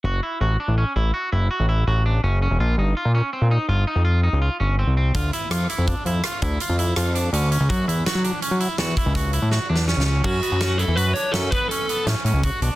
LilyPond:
<<
  \new Staff \with { instrumentName = "Lead electric guitar" } { \time 7/4 \key fis \phrygian \tempo 4 = 165 r1. r4 | r1. r4 | r1. r4 | r1. r4 |
fis'4. a'8 b'8 cis''8 a'8 b'8 a'4 r2 | }
  \new Staff \with { instrumentName = "Clean electric guitar" } { \time 7/4 \key fis \phrygian fis'8 e'8 fis'8 d'8 cis'8 e'8 fis'8 e'8 fis'8 e'8 fis'8 d'8 cis'8 cis'8 | eis'8 dis'8 eis'8 cis'8 bis8 dis'8 eis'8 dis'8 eis'8 dis'8 eis'8 cis'8 bis8 bis8 | f'8 e'8 f'8 e'8 d'8 e'8 f'8 e'8 f'8 e'8 f'8 d'8 cis'8 cis'8 | fis'8 e'8 fis'8 d'8 cis'8 e'8 fis'8 e'8 fis'8 e'8 fis'8 d'8 cis'8 cis'8 |
cis'8 b8 cis'8 e'8 fis'8 d'8 cis'8 b8 cis'8 b8 cis'8 cis'8 fis'8 d'8 | }
  \new Staff \with { instrumentName = "Analog synth bass" } { \clef bass \time 7/4 \key fis \phrygian fis,,8 r8 a,,8 r16 a,,8 r16 a,,8 r8 fis,,8 r16 a,,8. a,,4 fis,,8. e,,16 | ais,,8 g,,8 r16 ais,8 r8 ais,8 r16 g,,8 r16 eis,4 cis,8 r16 g,,8. bis,,8. | d,8 r8 f,8 r16 f,8 r16 f,8 r8 d,8 r16 f,8. f,4 d,8. cis,16 | fis,8 e,8 r16 fis8 r8 fis8 r16 e,8 r16 cis,4 a,8 r16 e,8. cis,8. |
fis,8 r16 fis,4 e,16 fis,8 r8 fis,8 r4. a,16 r16 a,16 cis,8 r16 b,,16 r16 | }
  \new DrumStaff \with { instrumentName = "Drums" } \drummode { \time 7/4 r4 r4 r4 r4 r4 r4 r4 | r4 r4 r4 r4 r4 r4 r4 | <hh bd>8 hh8 <hh ss>8 hh8 <hh bd>8 hh8 <hh ss>8 <hh bd>8 hh8 hh8 <hh ss>8 hh8 hh8 hh8 | <hh bd>8 hh8 <hh sn>8 hh8 hh8 hh8 <hh sn>8 <hh bd>8 <hh bd sn>8 hh8 \tuplet 3/2 { sn8 r8 sn8 sn8 sn8 r8 } |
<cymc bd>8 hh8 <hh sn>8 hh8 hh8 hh8 <hh sn>8 <hh bd>8 hh8 hh8 <hh sn>8 hh8 <hh bd>8 hh8 | }
>>